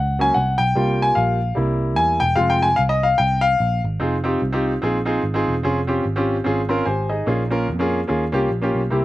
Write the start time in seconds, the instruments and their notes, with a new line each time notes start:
Already playing: picked electric bass C#2, grand piano F#5
0.19 grand piano F#3 A#3 C#4 G#5
0.34 picked electric bass C2, grand piano F#5
0.58 picked electric bass B1, grand piano G5
0.75 picked electric bass C2, grand piano G3 A#3 F4
1.02 grand piano G#5
1.15 picked electric bass A#1, grand piano F5
1.55 picked electric bass C2, grand piano G3 A#3 E4
1.96 picked electric bass E2, grand piano G#5
2.20 picked electric bass E1, grand piano G5
2.36 picked electric bass F1, grand piano G#3 C4 F4 F5
2.50 grand piano G5
2.63 grand piano G#5
2.76 picked electric bass C2, grand piano F5
2.89 grand piano D#5
3.03 grand piano F5
3.18 picked electric bass C2, grand piano G5
3.41 grand piano F5
3.60 picked electric bass A#1
3.84 picked electric bass G#1
4.00 picked electric bass F1, grand piano C4 D#4 F4 G#4
4.24 grand piano C4 D#4 F4 G4
4.42 picked electric bass C2
4.53 grand piano C4 D#4 F4 G4
4.82 picked electric bass A#1, grand piano C4 D#4 F4 G#4
5.05 grand piano C4 D#4 F4 G#4
5.23 picked electric bass G#1
5.34 grand piano C4 D#4 F4 G#4
5.48 picked electric bass E1
5.63 picked electric bass F1, grand piano C4 C#4 F4 G#4
5.87 grand piano C4 C#4 F4 G4
6.05 picked electric bass G#1
6.16 grand piano C4 C#4 F4 G4
6.44 picked electric bass G#1, grand piano C4 C#4 F4 G#4
6.69 grand piano C4 C#4 F4 A#4 C6
6.86 picked electric bass G#1, grand piano G4 C5 G#5
7.09 grand piano D#4 G#4 D#5
7.26 picked electric bass A#1, grand piano A#2 A#3 C#4 F4 G#4
7.50 grand piano A#3 C#4 F4 A#4
7.69 picked electric bass F2
7.79 grand piano A#3 C#4 F4 G#4
8.07 picked electric bass D#2, grand piano A#3 C#4 F4 G#4
8.32 picked electric bass C2, grand piano A#3 C#4 F4 G4
8.50 picked electric bass A#1
8.62 grand piano A#3 C#4 F4 G4
8.75 picked electric bass B1
8.90 picked electric bass C2, grand piano C3 A#3 C4 E4 G4